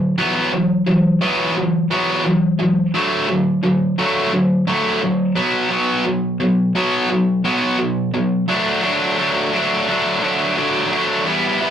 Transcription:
Already playing: D3 F#3
0.18 E3 F#3 B3
0.52 E3 F#3
0.86 E3 F#3
1.21 E3 F#3 B3
1.56 E3 F#3
1.91 E3 F#3 B3
2.25 E3 F#3
2.59 E3 F#3
2.94 D3 F#3 A3
3.29 D3 F#3
3.63 D3 F#3
3.98 D3 F#3 A3
4.33 D3 F#3
4.67 D3 F#3 A3
5.02 D3 F#3
5.35 B2 F#3 B3
5.70 B2 F#3 B3
6.05 B2 F#3
6.40 B2 F#3
6.75 B2 F#3 B3
7.10 B2 F#3
7.44 B2 F#3 B3
7.78 B2 F#3
8.14 B2 F#3
8.48 D3 F#3 A3 D4
8.83 D3 F#3 A3 D4
9.19 D3 F#3 A3 D4
9.53 D3 F#3 A3 D4
9.88 D3 F#3 A3 D4
10.23 D3 F#3 A3 D4
10.57 D3 F#3 A3 D4
10.92 D3 F#3 A3 D4
11.26 E3 G3 B3 E4
11.61 E3 G3 B3 E4

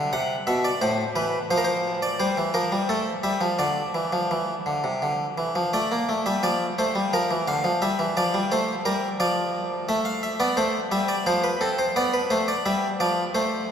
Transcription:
Already playing: D3 E5
0.13 C3 F#5
0.47 B2 E5
0.64 D5
0.81 A2 C5
1.16 E3 B4
1.51 F3 C5
1.57 A#4
1.64 C5
2.02 D5
2.20 G3 C5
2.37 E3
2.54 F3 A#4
2.72 G3
2.89 A3 A4
3.23 G3 E5
3.41 F3
3.59 D3 D5
3.95 E3
4.13 F3
4.31 E3
4.66 D3
4.84 C3
5.02 D3
5.38 E3
5.55 F3
5.73 A3 D5
5.91 A#3
6.09 A3
6.26 G3 E5
6.43 F3 D5
6.78 A3 C5
6.95 G3
7.13 F3 A#4
7.31 E3
7.48 D3 F5
7.64 F3
7.82 G3 E5
7.99 E3
8.17 F3 D5
8.34 G3
8.52 A3 C5
8.85 G3 A#4
9.20 F3 D5
9.89 A3 E5
10.05 F5
10.23 E5
10.40 B3 D5
10.57 A3 C5
10.92 G3 E5
11.08 D5
11.26 F3 C5
11.44 B4
11.61 C4 A4
11.79 C5
11.96 B3 D5
12.14 B4
12.30 A3 C5
12.48 D5
12.66 G3 E5
13.00 F3 D5
13.35 A3 C5

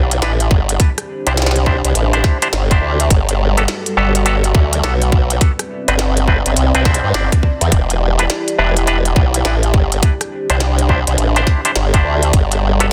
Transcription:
Already playing: B1 E4 G4 D5
0.11 closed hi-hat
0.22 A1 D4 E4 G4 B4, snare, closed hi-hat
0.40 closed hi-hat
0.51 G1, kick
0.69 closed hi-hat
0.79 D4 G4 C5, kick, closed hi-hat
0.98 cross-stick, closed hi-hat
1.27 C2 D4 E4 G4 C5, closed hi-hat
1.37 snare, closed hi-hat
1.42 snare
1.46 snare
1.51 snare
1.56 closed hi-hat
1.66 D4 E4 G4 C5, kick
1.84 C2, closed hi-hat
1.95 A1, closed hi-hat
2.13 D4 E4 G4 C5, closed hi-hat
2.24 kick, cross-stick, snare
2.42 D4 E4 G4 C5, closed hi-hat
2.53 G1, snare, closed hi-hat
2.71 D4 E4 G4 C5, kick, closed hi-hat
2.82 D2
3.00 closed hi-hat
3.10 G1 G3 F#4 A4 B4, kick, closed hi-hat
3.29 closed hi-hat
3.57 B3 F#4 G4 A4, closed hi-hat
3.68 snare, closed hi-hat
3.86 closed hi-hat
3.97 G1 B3 F#4 G4 A4
4.15 closed hi-hat
4.26 B3 F#4 G4 A4, closed hi-hat
4.44 closed hi-hat
4.54 D2, kick
4.73 closed hi-hat
4.83 B1 B3 F#4 G4 A4, snare, closed hi-hat
5.02 closed hi-hat
5.12 B1, kick
5.30 closed hi-hat
5.41 C4 D5 E5, kick, closed hi-hat
5.59 cross-stick, closed hi-hat
5.88 G1 C4 D4 E4 B4, closed hi-hat
5.99 snare, closed hi-hat
6.17 closed hi-hat
6.28 C4 D4 E4 B4, kick
6.46 G1, closed hi-hat
6.57 C2, closed hi-hat
6.75 C2 C4 D4 E4 B4, closed hi-hat
6.85 C4 D4 E4 C5, kick, cross-stick, snare
6.90 cross-stick
6.94 cross-stick, closed hi-hat
6.99 cross-stick
7.03 G2
7.14 G1 C4 D4 E4 D5, snare, closed hi-hat
7.32 kick, closed hi-hat
7.43 kick
7.61 E2, closed hi-hat
7.72 E1 E4 G4, kick, closed hi-hat
7.90 closed hi-hat
8.19 D4 E4 G4 B4, closed hi-hat
8.30 snare, closed hi-hat
8.48 closed hi-hat
8.58 E1 D4 E4 G4 B4
8.77 closed hi-hat
8.87 D4 E4 G4 B4, closed hi-hat
9.05 closed hi-hat
9.16 B1, kick
9.34 closed hi-hat
9.45 A1 D4 E4 G4 B4, snare, closed hi-hat
9.63 closed hi-hat
9.74 G1, kick
9.92 closed hi-hat
10.03 D4 C5, kick, closed hi-hat
10.21 cross-stick, closed hi-hat
10.50 C2 D4 E4 G4 C5, closed hi-hat
10.60 snare, closed hi-hat
10.79 closed hi-hat
10.89 D4 E4 G4 C5, kick
11.07 C2, closed hi-hat
11.18 A1, closed hi-hat
11.36 D4 E4 G4 C5, closed hi-hat
11.47 kick, cross-stick, snare
11.65 D4 E4 G4 C5, closed hi-hat
11.75 G1, snare, closed hi-hat
11.94 D4 E4 G4 C5, kick, closed hi-hat
12.04 D2
12.23 closed hi-hat
12.33 G1 G3 F#4 A4 B4, kick, closed hi-hat
12.52 closed hi-hat
12.80 B3 F#4 G4 A4, closed hi-hat

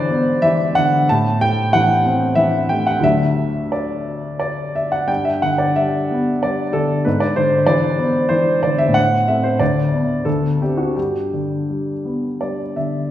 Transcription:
Already playing: G#2 D3 E3 B4 C5 D5
0.10 B3
0.42 E3 E5
0.75 D3 F#5
1.09 A2 A5
1.41 A3 G5
1.73 E3 F#5
2.06 C4
2.35 E3 E5
2.69 A3 G5
2.87 F#5
3.00 D2 F#3 A3 D4 E5
3.72 D5
4.40 D5
4.75 E5
4.92 F#5
5.08 G2 G5
5.25 E5
5.42 D3 F#5
5.58 D5
5.76 G3 E5
6.11 B3
6.43 G3 D5
6.73 D3 A4
7.05 G#2 B4
7.20 D5
7.36 D3 C5
7.66 E3 D5
7.98 B3
8.29 E3 C5
8.63 D3 D5
8.78 E5
8.88 A2
8.94 F#5
9.28 A3 C4 E5
9.43 C5
9.59 D2 D5
9.93 B3 D4
10.25 D2 A4
10.62 C4 D4 G4
10.77 F#4
10.96 G2 G4
11.33 D3
11.70 G3
12.05 B3
12.41 G3 D5
12.76 D3 E5

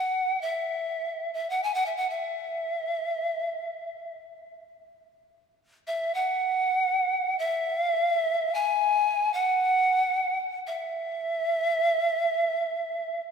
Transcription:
Already playing: F#5
0.41 E5
1.34 E5
1.50 F#5
1.63 G#5
1.74 F#5
1.86 E5
1.97 F#5
2.10 E5
5.87 E5
6.14 F#5
7.39 E5
8.03 F5
8.15 E5
8.54 G#5
9.34 F#5
10.67 E5

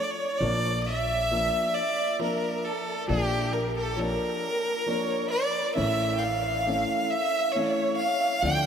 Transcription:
0.03 D5
0.10 C#5
0.38 A#1 F3 C#5 D5
0.42 A#3 D4
0.50 D5
0.82 E5
0.86 E5
1.31 F3 A#3 D4
1.67 E5
1.74 D5
2.19 F3 A#3 D4 A#4
2.65 A4
3.08 A#1 F3 A#3 D4 G4
3.53 A#4
3.77 A4
3.96 F3 A#3 D4 A#4 C#5
4.00 A4
4.11 A#4
4.86 F3 A#3 D4 C#5
5.28 D5 E5
5.34 D5
5.75 A1 E3 A3 C#4 E5
6.15 F5 G5
6.23 F5
6.66 E3 A3 C#4
7.10 E5
7.52 E3 C#5
7.56 A3 C#4 C#5
7.97 F5
8.01 F5
8.42 D2 F3 A3 D4 G5
8.46 G5

